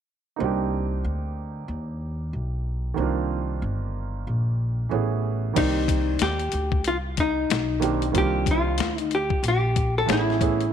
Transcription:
0.36 upright bass C2, grand piano A#3 C4 D#4
0.42 grand piano D4 G4
1.04 upright bass D2
1.68 upright bass D#2
2.33 upright bass B1
2.94 upright bass C2, grand piano D#3 A#3 C4
3.00 grand piano D4 F4
3.62 upright bass G1
4.27 upright bass A#1
4.89 upright bass A1, grand piano E3 A3 B3 C#4
4.93 grand piano G#4
5.53 upright bass C2, grand piano D#3 A#3 C4 G4 D5, kick, closed hi-hat, crash
5.58 hollow-body jazz guitar D#4
5.88 kick, closed hi-hat
6.19 upright bass D#2, hollow-body jazz guitar G4, snare, closed hi-hat
6.39 closed hi-hat
6.52 upright bass D2, closed hi-hat
6.72 kick
6.84 upright bass C2, hollow-body jazz guitar F4, closed hi-hat
7.17 hollow-body jazz guitar D#4, kick, closed hi-hat
7.50 upright bass B1, snare, closed hi-hat
7.80 grand piano D#3 A#3 C4 D4 G4, closed hi-hat
8.02 closed hi-hat
8.12 upright bass C2, grand piano D#3 A#3 C4 D4 F4, kick, closed hi-hat
8.18 hollow-body jazz guitar G4
8.46 kick, closed hi-hat
8.51 hollow-body jazz guitar F4
8.78 upright bass D2, snare, closed hi-hat
8.98 hollow-body jazz guitar D#4, closed hi-hat
9.11 hollow-body jazz guitar G4, closed hi-hat
9.30 muted upright bass stroke, kick
9.43 upright bass A#1, closed hi-hat
9.48 hollow-body jazz guitar G4
9.76 kick, closed hi-hat
9.98 hollow-body jazz guitar A4
10.06 upright bass A1, grand piano E3 A3 B3 C#4 G#4, closed hi-hat
10.10 hollow-body jazz guitar E4, snare
10.30 snare
10.38 grand piano E3 A3 B3 C#4 G#4, kick, closed hi-hat
10.60 closed hi-hat

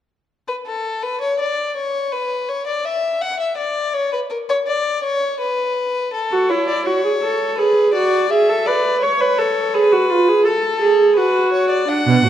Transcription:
0.48 violin B4
0.66 violin A4
1.03 violin B4
1.21 violin C#5
1.40 violin D5
1.76 violin C#5
2.13 violin B4
2.49 violin C#5
2.67 violin D5
2.85 violin E5
3.22 violin F#5
3.40 violin E5
3.58 violin D5
3.94 violin C#5
4.12 violin B4
4.30 violin A#4
4.49 violin C#5
4.67 violin D5
5.03 violin C#5
5.40 violin B4
6.13 violin A4
6.32 viola F#4
6.49 viola E4, violin C#5
6.68 violin D5
6.86 viola F#4, violin C#5
7.04 viola G#4
7.22 viola A4
7.58 viola G#4, violin B4
7.94 viola F#4, violin D5
8.30 viola G#4, violin E5
8.49 viola A4
8.66 viola B4, violin D5
9.02 violin C#5, viola C#5
9.21 viola B4
9.38 viola A4
9.74 viola G#4, violin B4
9.92 viola F#4
10.10 viola F4
10.28 viola G#4
10.45 viola A4, violin A4
10.81 viola G#4
11.16 viola F#4, violin B4
11.52 violin C#5
11.70 violin D5
11.88 viola D4, violin F#5
12.07 cello B2
12.24 cello A2, viola F#4

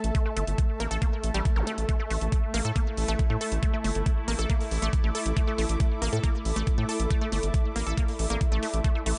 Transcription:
Already playing: synth drone A3 A4, ambient pad A4 E5 A5
0.04 analog synth bass A1, closed hi-hat
0.15 synth arpeggio sound A3, kick, closed hi-hat
0.26 synth arpeggio sound A3
0.37 analog synth bass G1, synth arpeggio sound A3, closed hi-hat
0.47 analog synth bass G1, closed hi-hat
0.58 kick, closed hi-hat
0.80 analog synth bass A1, synth arpeggio sound A#3, closed hi-hat
0.91 analog synth bass A1, synth arpeggio sound A4, closed hi-hat
1.02 synth arpeggio sound A#3, kick, closed hi-hat
1.24 analog synth bass A1, closed hi-hat
1.34 analog synth bass A1, synth arpeggio sound G3, closed hi-hat
1.45 kick, closed hi-hat
1.56 analog synth bass A1, synth arpeggio sound A#4, zap
1.67 synth arpeggio sound A3, closed hi-hat
1.78 analog synth bass A1, closed hi-hat
1.89 synth arpeggio sound A3, synth drone E4, kick, closed hi-hat
2.00 synth arpeggio sound A3
2.10 analog synth bass A1, synth arpeggio sound A3, open hi-hat
2.21 analog synth bass A1, closed hi-hat
2.32 kick, closed hi-hat
2.54 analog synth bass A1, synth arpeggio sound A#3, open hi-hat
2.65 analog synth bass A2, synth arpeggio sound A4, closed hi-hat
2.76 synth arpeggio sound A#3, kick, closed hi-hat
2.95 analog synth bass A1, ambient pad D6, open hi-hat
3.08 analog synth bass A1, synth arpeggio sound A3, closed hi-hat
3.19 kick, closed hi-hat
3.30 analog synth bass A2, synth arpeggio sound A3
3.41 synth arpeggio sound A4, open hi-hat
3.52 analog synth bass A1, closed hi-hat
3.63 synth arpeggio sound A3, kick, closed hi-hat
3.74 synth arpeggio sound A3
3.84 analog synth bass G1, synth arpeggio sound A3, open hi-hat
3.95 analog synth bass G1, closed hi-hat
4.06 kick, closed hi-hat
4.28 analog synth bass A1, synth arpeggio sound A#3, open hi-hat
4.39 analog synth bass A1, synth arpeggio sound A4, closed hi-hat
4.50 synth arpeggio sound A#3, kick, closed hi-hat
4.61 open hi-hat
4.71 analog synth bass A1, open hi-hat
4.82 analog synth bass A1, synth arpeggio sound A3, closed hi-hat
4.93 kick, closed hi-hat
5.04 analog synth bass A1, synth arpeggio sound A3
5.15 synth arpeggio sound A4, open hi-hat
5.26 analog synth bass A1, closed hi-hat
5.37 synth arpeggio sound A3, kick, closed hi-hat
5.48 synth arpeggio sound A3
5.58 analog synth bass A1, synth arpeggio sound A3, open hi-hat
5.69 analog synth bass A1, closed hi-hat
5.80 kick, closed hi-hat
6.02 analog synth bass A1, synth arpeggio sound A#3, open hi-hat
6.13 analog synth bass A2, synth arpeggio sound A4, closed hi-hat
6.24 synth arpeggio sound A#3, kick, closed hi-hat
6.45 analog synth bass A1, open hi-hat
6.56 analog synth bass A1, synth arpeggio sound A3, closed hi-hat
6.67 kick, closed hi-hat
6.78 analog synth bass A2, synth arpeggio sound A3
6.89 synth arpeggio sound A4, open hi-hat
7.00 analog synth bass A1, closed hi-hat
7.11 synth arpeggio sound A3, kick, closed hi-hat
7.21 synth arpeggio sound A3
7.32 analog synth bass G1, synth arpeggio sound A3, open hi-hat
7.43 analog synth bass G1, closed hi-hat
7.54 kick, closed hi-hat
7.76 analog synth bass A1, synth arpeggio sound A#3, open hi-hat
7.87 analog synth bass A1, synth arpeggio sound A4, closed hi-hat
7.97 synth arpeggio sound A#3, kick, closed hi-hat
8.08 open hi-hat
8.19 analog synth bass A1, open hi-hat
8.30 analog synth bass A1, synth arpeggio sound A#3, closed hi-hat
8.41 kick, closed hi-hat
8.52 analog synth bass A1, synth arpeggio sound A3
8.63 synth arpeggio sound A3, open hi-hat
8.74 analog synth bass A1, closed hi-hat
8.84 synth arpeggio sound A3, kick, closed hi-hat
8.95 synth arpeggio sound A3
9.06 analog synth bass A1, synth arpeggio sound A3, open hi-hat

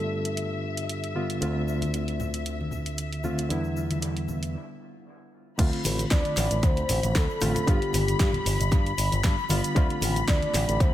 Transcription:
Already playing: picked electric bass G2, reed electric piano D3 G3 B3 F4, soft synth lead A4, string section E5
0.25 closed hi-hat
0.37 closed hi-hat
0.77 closed hi-hat
0.89 closed hi-hat
1.04 closed hi-hat
1.15 reed electric piano D3 G3 B3 F4
1.30 closed hi-hat
1.41 picked electric bass D2, reed electric piano D3 A3 C4 F4, closed hi-hat, shaker
1.68 shaker
1.81 closed hi-hat, high conga, shaker
1.93 closed hi-hat, shaker
2.08 closed hi-hat
2.20 muted conga, low conga, shaker
2.34 closed hi-hat, shaker
2.45 closed hi-hat, shaker
2.61 high conga
2.71 low conga, shaker
2.86 closed hi-hat, shaker
2.98 closed hi-hat, shaker
3.13 closed hi-hat
3.23 reed electric piano D3 A3 C4 F4, high conga, shaker
3.38 closed hi-hat, muted conga, shaker
3.49 picked electric bass E2, reed electric piano D3 G3 B3 E4, closed hi-hat, shaker
3.64 shaker
3.77 shaker
3.90 closed hi-hat, high conga, shaker
4.02 closed hi-hat, shaker
4.17 closed hi-hat
4.28 muted conga, low conga, shaker
4.43 closed hi-hat, shaker
5.58 picked electric bass D2, reed electric piano D3 A3 C4 F4, string section B5, kick, closed hi-hat, crash, shaker
5.73 closed hi-hat
5.84 picked electric bass A1, open hi-hat, high conga, shaker
5.85 shaker
5.98 closed hi-hat, shaker
6.00 shaker
6.11 picked electric bass D2, soft synth lead D5, kick, snare, closed hi-hat, shaker
6.25 closed hi-hat, high conga
6.36 picked electric bass A1, snare, open hi-hat, muted conga, shaker
6.50 picked electric bass A1, closed hi-hat, shaker
6.63 picked electric bass D2, soft synth lead C5, kick, closed hi-hat, high conga, shaker
6.76 closed hi-hat, shaker
6.89 picked electric bass A1, open hi-hat, low conga, shaker
7.03 picked electric bass A1, closed hi-hat, high conga, shaker
7.15 picked electric bass D2, soft synth lead A4, kick, snare, closed hi-hat, shaker
7.30 shaker
7.41 picked electric bass A1, reed electric piano D3 A3 C4 F4, cross-stick, open hi-hat, high conga, shaker
7.55 closed hi-hat, muted conga, low conga, shaker
7.66 picked electric bass G2, reed electric piano D3 G3 B3 F4, soft synth lead G4, kick, closed hi-hat, shaker
7.82 closed hi-hat
7.93 picked electric bass G1, open hi-hat, high conga, shaker
8.07 closed hi-hat, shaker
8.09 shaker
8.20 picked electric bass G2, kick, snare, closed hi-hat, shaker
8.33 closed hi-hat, high conga, low conga
8.45 picked electric bass G1, open hi-hat, muted conga, shaker
8.59 picked electric bass G1, closed hi-hat, low conga, shaker
8.61 shaker
8.71 picked electric bass G2, kick, closed hi-hat, high conga, shaker
8.86 closed hi-hat, shaker
8.98 picked electric bass G1, open hi-hat, shaker
9.11 picked electric bass G1, closed hi-hat, high conga, shaker
9.13 shaker
9.24 picked electric bass G2, kick, snare, closed hi-hat, shaker
9.38 shaker
9.49 picked electric bass G1, reed electric piano D3 G3 B3 F4, open hi-hat, high conga, shaker
9.64 closed hi-hat, shaker
9.75 picked electric bass D2, reed electric piano D3 A3 C4 F4, kick, closed hi-hat, shaker
9.90 closed hi-hat
10.01 picked electric bass A1, open hi-hat, high conga, shaker
10.16 closed hi-hat, shaker
10.28 picked electric bass D2, soft synth lead D5, kick, snare, closed hi-hat, shaker
10.42 closed hi-hat, high conga
10.53 picked electric bass A1, snare, open hi-hat, muted conga, shaker
10.68 picked electric bass A1, closed hi-hat, shaker
10.80 picked electric bass D2, soft synth lead C5, kick, closed hi-hat, high conga, shaker

